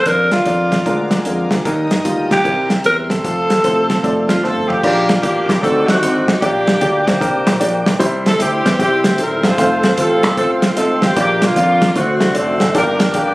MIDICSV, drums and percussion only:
0, 0, Header, 1, 2, 480
1, 0, Start_track
1, 0, Key_signature, -2, "major"
1, 0, Tempo, 396301
1, 80, Time_signature, 4, 2, 24, 8
1, 16162, End_track
2, 0, Start_track
2, 0, Title_t, "Drums"
2, 68, Note_on_c, 9, 42, 90
2, 74, Note_on_c, 9, 36, 100
2, 189, Note_off_c, 9, 42, 0
2, 195, Note_off_c, 9, 36, 0
2, 380, Note_on_c, 9, 42, 66
2, 384, Note_on_c, 9, 38, 101
2, 501, Note_off_c, 9, 42, 0
2, 505, Note_off_c, 9, 38, 0
2, 551, Note_on_c, 9, 42, 80
2, 559, Note_on_c, 9, 36, 73
2, 672, Note_off_c, 9, 42, 0
2, 680, Note_off_c, 9, 36, 0
2, 870, Note_on_c, 9, 36, 77
2, 871, Note_on_c, 9, 42, 55
2, 872, Note_on_c, 9, 38, 91
2, 991, Note_off_c, 9, 36, 0
2, 992, Note_off_c, 9, 42, 0
2, 993, Note_off_c, 9, 38, 0
2, 1040, Note_on_c, 9, 36, 89
2, 1041, Note_on_c, 9, 42, 69
2, 1161, Note_off_c, 9, 36, 0
2, 1162, Note_off_c, 9, 42, 0
2, 1342, Note_on_c, 9, 38, 109
2, 1346, Note_on_c, 9, 42, 58
2, 1463, Note_off_c, 9, 38, 0
2, 1467, Note_off_c, 9, 42, 0
2, 1515, Note_on_c, 9, 42, 86
2, 1636, Note_off_c, 9, 42, 0
2, 1825, Note_on_c, 9, 38, 102
2, 1832, Note_on_c, 9, 36, 75
2, 1838, Note_on_c, 9, 42, 72
2, 1946, Note_off_c, 9, 38, 0
2, 1953, Note_off_c, 9, 36, 0
2, 1960, Note_off_c, 9, 42, 0
2, 2003, Note_on_c, 9, 36, 103
2, 2003, Note_on_c, 9, 42, 87
2, 2124, Note_off_c, 9, 36, 0
2, 2124, Note_off_c, 9, 42, 0
2, 2310, Note_on_c, 9, 42, 66
2, 2314, Note_on_c, 9, 38, 105
2, 2432, Note_off_c, 9, 42, 0
2, 2435, Note_off_c, 9, 38, 0
2, 2483, Note_on_c, 9, 42, 85
2, 2488, Note_on_c, 9, 36, 70
2, 2604, Note_off_c, 9, 42, 0
2, 2609, Note_off_c, 9, 36, 0
2, 2797, Note_on_c, 9, 36, 78
2, 2800, Note_on_c, 9, 42, 56
2, 2801, Note_on_c, 9, 38, 87
2, 2919, Note_off_c, 9, 36, 0
2, 2921, Note_off_c, 9, 42, 0
2, 2922, Note_off_c, 9, 38, 0
2, 2968, Note_on_c, 9, 36, 92
2, 2970, Note_on_c, 9, 42, 69
2, 3090, Note_off_c, 9, 36, 0
2, 3091, Note_off_c, 9, 42, 0
2, 3271, Note_on_c, 9, 38, 102
2, 3275, Note_on_c, 9, 42, 61
2, 3392, Note_off_c, 9, 38, 0
2, 3396, Note_off_c, 9, 42, 0
2, 3443, Note_on_c, 9, 42, 83
2, 3564, Note_off_c, 9, 42, 0
2, 3754, Note_on_c, 9, 38, 95
2, 3760, Note_on_c, 9, 36, 81
2, 3768, Note_on_c, 9, 42, 68
2, 3875, Note_off_c, 9, 38, 0
2, 3881, Note_off_c, 9, 36, 0
2, 3889, Note_off_c, 9, 42, 0
2, 3929, Note_on_c, 9, 36, 103
2, 3932, Note_on_c, 9, 42, 91
2, 4050, Note_off_c, 9, 36, 0
2, 4053, Note_off_c, 9, 42, 0
2, 4240, Note_on_c, 9, 42, 66
2, 4244, Note_on_c, 9, 38, 102
2, 4361, Note_off_c, 9, 42, 0
2, 4365, Note_off_c, 9, 38, 0
2, 4409, Note_on_c, 9, 42, 89
2, 4415, Note_on_c, 9, 36, 72
2, 4530, Note_off_c, 9, 42, 0
2, 4536, Note_off_c, 9, 36, 0
2, 4721, Note_on_c, 9, 42, 58
2, 4722, Note_on_c, 9, 36, 79
2, 4722, Note_on_c, 9, 38, 95
2, 4842, Note_off_c, 9, 42, 0
2, 4843, Note_off_c, 9, 36, 0
2, 4843, Note_off_c, 9, 38, 0
2, 4893, Note_on_c, 9, 36, 97
2, 4896, Note_on_c, 9, 42, 61
2, 5014, Note_off_c, 9, 36, 0
2, 5017, Note_off_c, 9, 42, 0
2, 5197, Note_on_c, 9, 38, 104
2, 5201, Note_on_c, 9, 42, 62
2, 5318, Note_off_c, 9, 38, 0
2, 5322, Note_off_c, 9, 42, 0
2, 5376, Note_on_c, 9, 38, 49
2, 5497, Note_off_c, 9, 38, 0
2, 5534, Note_on_c, 9, 45, 58
2, 5655, Note_off_c, 9, 45, 0
2, 5694, Note_on_c, 9, 43, 88
2, 5816, Note_off_c, 9, 43, 0
2, 5856, Note_on_c, 9, 36, 109
2, 5857, Note_on_c, 9, 49, 94
2, 5977, Note_off_c, 9, 36, 0
2, 5978, Note_off_c, 9, 49, 0
2, 6167, Note_on_c, 9, 42, 73
2, 6170, Note_on_c, 9, 38, 114
2, 6288, Note_off_c, 9, 42, 0
2, 6291, Note_off_c, 9, 38, 0
2, 6339, Note_on_c, 9, 42, 92
2, 6341, Note_on_c, 9, 36, 81
2, 6460, Note_off_c, 9, 42, 0
2, 6462, Note_off_c, 9, 36, 0
2, 6651, Note_on_c, 9, 36, 90
2, 6657, Note_on_c, 9, 42, 60
2, 6658, Note_on_c, 9, 38, 103
2, 6772, Note_off_c, 9, 36, 0
2, 6778, Note_off_c, 9, 42, 0
2, 6779, Note_off_c, 9, 38, 0
2, 6822, Note_on_c, 9, 36, 108
2, 6831, Note_on_c, 9, 42, 74
2, 6943, Note_off_c, 9, 36, 0
2, 6952, Note_off_c, 9, 42, 0
2, 7127, Note_on_c, 9, 38, 109
2, 7131, Note_on_c, 9, 42, 64
2, 7248, Note_off_c, 9, 38, 0
2, 7252, Note_off_c, 9, 42, 0
2, 7301, Note_on_c, 9, 42, 100
2, 7422, Note_off_c, 9, 42, 0
2, 7609, Note_on_c, 9, 38, 106
2, 7610, Note_on_c, 9, 36, 81
2, 7622, Note_on_c, 9, 42, 77
2, 7730, Note_off_c, 9, 38, 0
2, 7731, Note_off_c, 9, 36, 0
2, 7744, Note_off_c, 9, 42, 0
2, 7778, Note_on_c, 9, 36, 108
2, 7780, Note_on_c, 9, 42, 94
2, 7899, Note_off_c, 9, 36, 0
2, 7901, Note_off_c, 9, 42, 0
2, 8083, Note_on_c, 9, 42, 70
2, 8087, Note_on_c, 9, 38, 113
2, 8204, Note_off_c, 9, 42, 0
2, 8208, Note_off_c, 9, 38, 0
2, 8251, Note_on_c, 9, 42, 94
2, 8259, Note_on_c, 9, 36, 79
2, 8373, Note_off_c, 9, 42, 0
2, 8380, Note_off_c, 9, 36, 0
2, 8568, Note_on_c, 9, 36, 91
2, 8570, Note_on_c, 9, 42, 62
2, 8572, Note_on_c, 9, 38, 106
2, 8689, Note_off_c, 9, 36, 0
2, 8692, Note_off_c, 9, 42, 0
2, 8693, Note_off_c, 9, 38, 0
2, 8738, Note_on_c, 9, 36, 108
2, 8744, Note_on_c, 9, 42, 78
2, 8859, Note_off_c, 9, 36, 0
2, 8865, Note_off_c, 9, 42, 0
2, 9044, Note_on_c, 9, 38, 117
2, 9048, Note_on_c, 9, 42, 66
2, 9165, Note_off_c, 9, 38, 0
2, 9170, Note_off_c, 9, 42, 0
2, 9214, Note_on_c, 9, 42, 93
2, 9335, Note_off_c, 9, 42, 0
2, 9525, Note_on_c, 9, 36, 81
2, 9525, Note_on_c, 9, 38, 118
2, 9538, Note_on_c, 9, 42, 75
2, 9646, Note_off_c, 9, 38, 0
2, 9647, Note_off_c, 9, 36, 0
2, 9660, Note_off_c, 9, 42, 0
2, 9693, Note_on_c, 9, 36, 110
2, 9695, Note_on_c, 9, 42, 99
2, 9814, Note_off_c, 9, 36, 0
2, 9816, Note_off_c, 9, 42, 0
2, 10005, Note_on_c, 9, 42, 76
2, 10009, Note_on_c, 9, 38, 110
2, 10126, Note_off_c, 9, 42, 0
2, 10130, Note_off_c, 9, 38, 0
2, 10172, Note_on_c, 9, 42, 101
2, 10177, Note_on_c, 9, 36, 75
2, 10293, Note_off_c, 9, 42, 0
2, 10298, Note_off_c, 9, 36, 0
2, 10485, Note_on_c, 9, 36, 84
2, 10488, Note_on_c, 9, 42, 62
2, 10489, Note_on_c, 9, 38, 106
2, 10606, Note_off_c, 9, 36, 0
2, 10609, Note_off_c, 9, 42, 0
2, 10610, Note_off_c, 9, 38, 0
2, 10653, Note_on_c, 9, 36, 99
2, 10656, Note_on_c, 9, 42, 75
2, 10774, Note_off_c, 9, 36, 0
2, 10777, Note_off_c, 9, 42, 0
2, 10953, Note_on_c, 9, 38, 111
2, 10957, Note_on_c, 9, 42, 69
2, 11074, Note_off_c, 9, 38, 0
2, 11078, Note_off_c, 9, 42, 0
2, 11121, Note_on_c, 9, 42, 87
2, 11242, Note_off_c, 9, 42, 0
2, 11427, Note_on_c, 9, 38, 111
2, 11437, Note_on_c, 9, 36, 88
2, 11441, Note_on_c, 9, 42, 78
2, 11548, Note_off_c, 9, 38, 0
2, 11558, Note_off_c, 9, 36, 0
2, 11562, Note_off_c, 9, 42, 0
2, 11606, Note_on_c, 9, 42, 99
2, 11607, Note_on_c, 9, 36, 104
2, 11727, Note_off_c, 9, 42, 0
2, 11728, Note_off_c, 9, 36, 0
2, 11912, Note_on_c, 9, 42, 73
2, 11915, Note_on_c, 9, 38, 103
2, 12033, Note_off_c, 9, 42, 0
2, 12036, Note_off_c, 9, 38, 0
2, 12082, Note_on_c, 9, 42, 90
2, 12089, Note_on_c, 9, 36, 82
2, 12203, Note_off_c, 9, 42, 0
2, 12210, Note_off_c, 9, 36, 0
2, 12393, Note_on_c, 9, 42, 61
2, 12394, Note_on_c, 9, 38, 109
2, 12396, Note_on_c, 9, 36, 83
2, 12514, Note_off_c, 9, 42, 0
2, 12515, Note_off_c, 9, 38, 0
2, 12517, Note_off_c, 9, 36, 0
2, 12566, Note_on_c, 9, 36, 105
2, 12566, Note_on_c, 9, 42, 75
2, 12687, Note_off_c, 9, 36, 0
2, 12687, Note_off_c, 9, 42, 0
2, 12866, Note_on_c, 9, 38, 111
2, 12870, Note_on_c, 9, 42, 65
2, 12987, Note_off_c, 9, 38, 0
2, 12991, Note_off_c, 9, 42, 0
2, 13041, Note_on_c, 9, 42, 94
2, 13162, Note_off_c, 9, 42, 0
2, 13348, Note_on_c, 9, 38, 114
2, 13355, Note_on_c, 9, 36, 83
2, 13361, Note_on_c, 9, 42, 78
2, 13469, Note_off_c, 9, 38, 0
2, 13476, Note_off_c, 9, 36, 0
2, 13482, Note_off_c, 9, 42, 0
2, 13524, Note_on_c, 9, 36, 104
2, 13524, Note_on_c, 9, 42, 98
2, 13645, Note_off_c, 9, 36, 0
2, 13645, Note_off_c, 9, 42, 0
2, 13829, Note_on_c, 9, 42, 75
2, 13832, Note_on_c, 9, 38, 117
2, 13950, Note_off_c, 9, 42, 0
2, 13953, Note_off_c, 9, 38, 0
2, 14003, Note_on_c, 9, 42, 91
2, 14006, Note_on_c, 9, 36, 81
2, 14125, Note_off_c, 9, 42, 0
2, 14127, Note_off_c, 9, 36, 0
2, 14312, Note_on_c, 9, 42, 60
2, 14313, Note_on_c, 9, 36, 86
2, 14313, Note_on_c, 9, 38, 111
2, 14433, Note_off_c, 9, 42, 0
2, 14434, Note_off_c, 9, 36, 0
2, 14434, Note_off_c, 9, 38, 0
2, 14481, Note_on_c, 9, 42, 76
2, 14482, Note_on_c, 9, 36, 106
2, 14602, Note_off_c, 9, 42, 0
2, 14603, Note_off_c, 9, 36, 0
2, 14784, Note_on_c, 9, 38, 116
2, 14788, Note_on_c, 9, 42, 67
2, 14905, Note_off_c, 9, 38, 0
2, 14909, Note_off_c, 9, 42, 0
2, 14955, Note_on_c, 9, 42, 96
2, 15076, Note_off_c, 9, 42, 0
2, 15262, Note_on_c, 9, 38, 114
2, 15271, Note_on_c, 9, 36, 84
2, 15276, Note_on_c, 9, 42, 77
2, 15383, Note_off_c, 9, 38, 0
2, 15392, Note_off_c, 9, 36, 0
2, 15397, Note_off_c, 9, 42, 0
2, 15438, Note_on_c, 9, 42, 96
2, 15441, Note_on_c, 9, 36, 117
2, 15560, Note_off_c, 9, 42, 0
2, 15562, Note_off_c, 9, 36, 0
2, 15742, Note_on_c, 9, 42, 77
2, 15746, Note_on_c, 9, 38, 111
2, 15863, Note_off_c, 9, 42, 0
2, 15867, Note_off_c, 9, 38, 0
2, 15913, Note_on_c, 9, 42, 91
2, 15923, Note_on_c, 9, 36, 85
2, 16034, Note_off_c, 9, 42, 0
2, 16044, Note_off_c, 9, 36, 0
2, 16162, End_track
0, 0, End_of_file